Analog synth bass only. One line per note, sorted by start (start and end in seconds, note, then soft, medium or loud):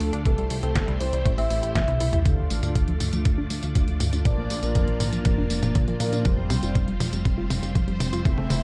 0.00 0.12 D2 medium
0.13 0.24 D2 medium
0.25 0.36 C2 loud
0.38 0.49 C2 medium
0.51 0.62 C2 loud
0.63 0.74 C2 medium
0.76 0.87 G1 loud
0.88 0.99 C2 medium
1.01 1.12 C2 medium
1.13 1.24 C2 medium
1.26 1.37 A1 loud
1.38 1.49 A1 medium
1.51 1.62 A1 medium
1.63 1.74 A1 medium
1.75 1.86 C2 loud
1.88 1.99 C2 medium
2.01 2.12 C2 medium
2.13 2.24 C2 medium
2.26 2.37 D2 loud
2.38 2.49 D2 medium
2.51 2.62 A1 medium
2.63 2.74 D2 medium
2.76 2.87 D2 loud
2.88 2.99 D2 medium
3.01 3.12 D2 loud
3.13 3.24 D2 medium
3.25 3.36 D2 loud
3.38 3.49 D2 medium
3.50 3.61 D2 loud
3.63 3.74 D2 medium
3.75 3.86 D2 loud
3.88 3.99 D2 medium
4.00 4.12 D2 medium
4.13 4.24 D2 medium
4.25 4.36 A#1 loud
4.38 4.49 A#1 medium
4.50 4.62 A#1 loud
4.63 4.74 A#1 medium
4.75 4.86 F2 loud
4.88 4.99 A#1 medium
5.00 5.11 A#1 medium
5.13 5.24 A#1 medium
5.25 5.36 F1 loud
5.38 5.49 F1 medium
5.50 5.61 F1 medium
5.63 5.74 F1 medium
5.75 5.86 A#2 loud
5.88 5.99 A#2 medium
6.00 6.11 A#2 loud
6.13 6.24 A#2 medium
6.25 6.37 F1 loud
6.38 6.49 F1 medium
6.50 6.61 C2 medium
6.63 6.74 F1 medium
6.75 6.86 F1 loud
6.88 6.99 F1 medium
7.00 7.11 F1 loud
7.13 7.24 F1 medium
7.25 7.36 F1 loud
7.38 7.49 F1 medium
7.50 7.61 F1 loud
7.63 7.74 F1 medium
7.75 7.86 F1 loud
7.88 7.99 F1 medium
8.00 8.12 F1 medium
8.13 8.24 F1 medium
8.25 8.36 E1 loud
8.38 8.49 E1 medium
8.50 8.61 E1 loud